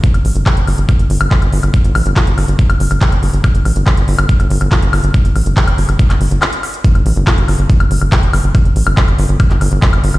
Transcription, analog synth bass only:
0.14 0.21 G1 medium
0.25 0.32 A1 medium
0.36 0.43 G1 medium
0.57 0.64 G1 medium
0.67 0.75 G1 loud
0.78 0.85 G1 medium
0.99 1.07 G1 medium
1.10 1.17 G1 loud
1.21 1.28 G1 medium
1.42 1.49 G1 medium
1.53 1.60 G1 loud
1.63 1.70 G1 medium
1.85 1.92 G1 medium
1.95 2.02 A1 loud
2.06 2.13 G1 medium
2.27 2.34 G1 medium
2.38 2.45 G1 loud
2.48 2.56 G1 medium
2.70 2.77 G1 medium
2.80 2.87 G1 loud
2.91 2.98 G1 loud
3.12 3.19 G1 medium
3.23 3.30 G1 loud
3.33 3.41 G1 medium
3.55 3.62 G1 medium
3.65 3.73 A1 loud
3.76 3.83 G1 medium
3.97 4.04 G1 medium
4.08 4.15 G1 loud
4.19 4.26 G1 medium
4.40 4.47 G1 medium
4.50 4.58 G1 loud
4.61 4.68 G1 loud
4.82 4.90 G1 medium
4.93 5.00 G1 loud
5.04 5.11 G1 medium
5.25 5.32 G1 medium
5.36 5.43 A1 medium
5.46 5.53 G1 medium
5.67 5.75 G1 medium
5.78 5.85 G1 loud
5.89 5.96 G1 medium
6.10 6.17 G1 medium
6.21 6.28 G1 loud
6.31 6.38 G1 loud
6.95 7.02 G1 medium
7.06 7.13 A1 medium
7.16 7.24 G1 medium
7.38 7.45 G1 medium
7.48 7.56 G1 loud
7.59 7.66 G1 medium
7.80 7.87 G1 medium
7.91 7.98 G1 loud
8.02 8.09 G1 loud
8.23 8.30 G1 medium
8.33 8.41 G1 loud
8.44 8.51 G1 medium
8.65 8.73 G1 medium
8.76 8.83 A1 loud
8.87 8.94 G1 medium
9.08 9.15 G1 medium
9.19 9.26 G1 loud
9.29 9.36 G1 medium
9.50 9.58 G1 medium
9.61 9.68 G1 loud
9.72 9.79 G1 medium
9.93 10.00 G1 medium
10.04 10.11 G1 loud
10.14 10.19 G1 medium

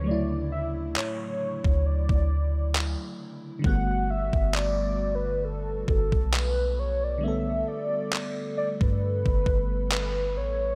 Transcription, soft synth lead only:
0.07 0.51 D5 loud
0.52 0.66 E5 medium
0.97 1.88 C#5 loud
1.86 3.20 D5 medium
3.65 4.12 F#5 loud
4.10 4.56 E5 loud
4.55 5.16 D5 loud
5.15 5.46 B4 medium
5.44 5.89 A4 medium
5.89 6.35 A4 loud
6.34 6.81 B4 loud
6.79 7.05 C#5 loud
7.04 7.25 D5 medium
7.24 7.69 E5 loud
7.68 8.57 D5 loud
8.58 8.68 D5 medium
8.82 9.88 B4 loud
9.92 10.39 B4 loud
10.37 10.75 C#5 loud

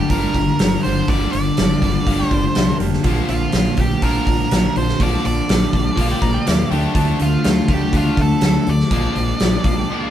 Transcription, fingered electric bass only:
0.10 0.25 G1 medium
0.35 0.50 G1 medium
0.60 0.75 G1 medium
0.86 1.00 G1 medium
1.09 1.24 G1 medium
1.34 1.49 G1 medium
1.59 1.74 G1 medium
1.82 1.97 G1 medium
2.06 2.22 G1 medium
2.32 2.47 G1 medium
2.57 2.71 C2 medium
2.80 2.95 F1 medium
3.05 3.20 A#1 medium
3.29 3.44 A#1 medium
3.53 3.68 A#1 medium
3.78 3.93 A#1 medium
4.02 4.17 A#1 medium
4.27 4.42 A#1 medium
4.52 4.67 A#1 medium
4.76 4.91 A#1 medium
5.00 5.15 A#1 medium
5.26 5.40 A#1 medium
5.50 5.65 A#1 medium
5.74 5.89 A#1 medium
5.98 6.13 A#1 medium
6.22 6.37 A#1 medium
6.48 6.62 D#2 medium
6.71 6.86 D2 medium
6.95 7.10 D2 medium
7.21 7.35 D2 medium
7.45 7.60 D2 medium
7.68 7.84 D2 medium
7.93 8.08 D2 medium
8.17 8.33 D2 medium
8.42 8.57 D2 medium
8.67 8.82 D2 medium
8.91 9.06 A#1 medium
9.16 9.31 A#1 medium
9.41 9.56 A#1 medium
9.64 9.79 A#1 medium

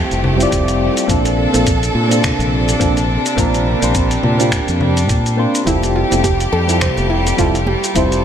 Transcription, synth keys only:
0.00 0.35 G3 medium
0.00 0.36 C4 medium
0.00 0.36 E4 medium
0.00 0.37 F4 medium
0.00 0.37 G4 medium
0.36 1.05 G3 loud
0.36 1.05 C4 medium
0.36 1.06 E4 loud
0.41 1.07 F4 loud
0.41 1.08 D5 loud
1.07 1.49 A#3 medium
1.07 1.49 C4 medium
1.07 1.50 D4 medium
1.07 1.50 F4 medium
1.07 1.51 A4 medium
1.52 1.67 A#3 medium
1.52 1.67 C4 medium
1.52 1.68 D4 medium
1.52 1.68 F4 medium
1.52 1.69 A4 medium
2.07 2.76 A#3 medium
2.07 2.76 C4 medium
2.07 2.77 D4 medium
2.12 2.78 F4 medium
2.12 2.79 A4 medium
2.79 2.97 A#3 loud
2.79 2.97 C4 medium
2.79 2.98 D4 medium
2.79 2.98 F4 medium
2.79 2.99 A4 loud
3.36 3.78 A#3 loud
3.36 3.78 C4 medium
3.36 3.79 D4 medium
3.36 3.79 F4 medium
3.36 3.80 A#4 loud
3.81 4.06 A#3 medium
3.81 4.07 C4 medium
3.81 4.07 D4 medium
3.81 4.07 F4 medium
3.81 4.08 C5 medium
4.38 4.93 A#3 medium
4.38 4.93 C4 medium
4.38 4.94 D4 medium
4.38 4.94 F4 medium
4.38 4.94 G4 medium
5.37 5.63 A#3 medium
5.37 5.63 C4 medium
5.37 5.63 D4 medium
5.37 5.64 F4 medium
5.37 5.64 C5 medium
5.66 6.07 G3 medium
5.66 6.07 C4 medium
5.66 6.08 E4 medium
5.66 6.08 F4 medium
5.66 6.08 A4 medium
6.10 6.25 G3 medium
6.10 6.25 C4 medium
6.10 6.25 E4 medium
6.10 6.26 F4 medium
6.10 6.26 A4 medium
6.66 7.34 G3 medium
6.66 7.34 C4 medium
6.66 7.35 E4 medium
6.70 7.36 F4 medium
6.70 7.37 A4 medium
7.37 7.55 G3 medium
7.37 7.55 C4 medium
7.37 7.56 E4 medium
7.37 7.56 F4 medium
7.37 7.56 A4 loud
7.95 8.24 G3 loud
7.95 8.24 C4 medium
7.95 8.24 E4 medium
7.95 8.24 F4 medium
7.95 8.24 C5 loud

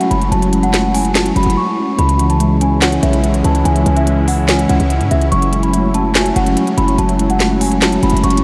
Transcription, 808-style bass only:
0.11 0.31 F#1 loud
0.32 1.32 F#1 loud
1.36 1.46 F#1 loud
1.46 1.56 F#1 loud
1.99 2.99 C#2 loud
3.03 3.43 B1 loud
3.45 3.64 C#2 loud
3.65 3.85 C#2 loud
3.86 4.66 C#2 loud
4.70 4.79 C#2 loud
4.80 5.02 C#2 loud
5.01 5.11 G#2 loud
5.11 5.31 C#2 loud
5.32 6.32 F#1 loud
6.36 6.56 F#1 loud
6.78 6.98 F#1 loud
6.99 7.99 F#1 loud
8.03 8.13 F#1 loud
8.13 8.23 F#1 loud
8.24 8.44 F#1 loud

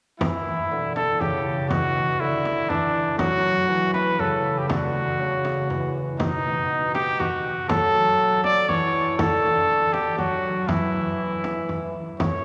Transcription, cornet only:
0.20 0.91 E4 medium
0.96 1.22 A4 medium
1.21 1.69 G4 medium
1.69 2.21 F#4 loud
2.20 2.71 E4 loud
2.69 3.18 D4 medium
3.18 3.92 F#4 loud
3.94 4.21 B4 loud
4.20 4.60 A4 medium
4.58 4.69 G4 medium
4.69 5.92 F#4 medium
6.20 6.91 D#4 medium
6.95 7.21 G4 medium
7.20 7.68 F#4 medium
7.69 8.43 A4 medium
8.44 8.70 D5 loud
8.69 9.18 C#5 loud
9.18 9.95 A4 medium
9.93 10.18 G4 medium
10.18 10.69 F#4 medium
10.68 11.94 E4 medium
12.19 12.45 C#5 medium

